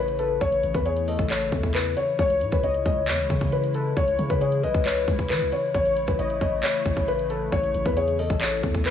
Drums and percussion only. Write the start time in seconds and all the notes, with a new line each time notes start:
0.08 closed hi-hat
0.19 closed hi-hat
0.41 kick, closed hi-hat
0.52 closed hi-hat
0.63 closed hi-hat
0.74 kick, closed hi-hat
0.86 closed hi-hat
0.97 closed hi-hat
1.08 open hi-hat
1.19 kick
1.30 clap, closed hi-hat
1.41 closed hi-hat
1.52 kick
1.63 kick, closed hi-hat
1.75 clap, closed hi-hat
1.86 closed hi-hat
1.97 closed hi-hat
2.19 kick, closed hi-hat
2.30 closed hi-hat
2.41 closed hi-hat
2.52 kick, closed hi-hat
2.63 closed hi-hat
2.74 closed hi-hat
2.86 kick, closed hi-hat
3.08 clap, closed hi-hat
3.19 closed hi-hat
3.30 kick
3.41 kick, closed hi-hat
3.52 closed hi-hat
3.64 closed hi-hat
3.74 closed hi-hat
3.97 kick, closed hi-hat
4.08 closed hi-hat
4.19 closed hi-hat
4.30 kick, closed hi-hat
4.41 closed hi-hat
4.52 closed hi-hat
4.63 closed hi-hat
4.74 kick
4.86 clap, closed hi-hat
4.97 closed hi-hat
5.08 kick
5.19 kick, closed hi-hat
5.30 clap, closed hi-hat
5.41 closed hi-hat
5.52 closed hi-hat
5.74 kick, closed hi-hat
5.86 closed hi-hat
5.97 closed hi-hat
6.07 kick, closed hi-hat
6.19 closed hi-hat
6.30 closed hi-hat
6.41 kick, closed hi-hat
6.63 clap, closed hi-hat
6.74 closed hi-hat
6.86 kick
6.97 kick, closed hi-hat
7.08 closed hi-hat
7.19 closed hi-hat
7.30 closed hi-hat
7.52 kick, closed hi-hat
7.63 closed hi-hat
7.74 closed hi-hat
7.85 kick, closed hi-hat
7.97 closed hi-hat
8.08 closed hi-hat
8.19 open hi-hat
8.30 kick
8.41 clap, closed hi-hat
8.52 closed hi-hat
8.63 kick
8.75 kick, closed hi-hat
8.86 clap, closed hi-hat